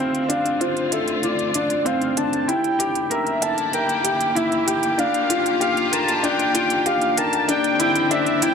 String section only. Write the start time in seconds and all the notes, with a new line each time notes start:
Already playing: D3 C4 G4
0.33 F4
0.61 A3
3.03 A#3
3.29 E4
3.59 G4
5.11 F4
7.48 D3
7.67 C4
8.28 E4